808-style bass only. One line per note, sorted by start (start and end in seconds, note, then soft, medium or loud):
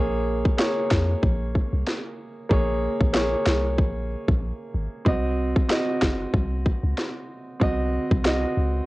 0.00 0.43 A#1 loud
0.91 1.15 F2 medium
1.23 1.60 A#1 loud
1.73 1.83 C2 medium
2.51 2.88 A#1 loud
3.01 3.35 A#1 medium
3.47 3.80 C2 medium
3.78 4.16 A#1 loud
4.28 4.52 A#1 medium
4.74 4.88 G#1 medium
5.06 5.54 C2 loud
6.02 6.26 F#1 medium
6.34 6.71 C2 loud
6.83 6.94 C#2 medium
7.61 7.99 C2 loud
8.11 8.46 C2 loud
8.57 8.81 C#2 medium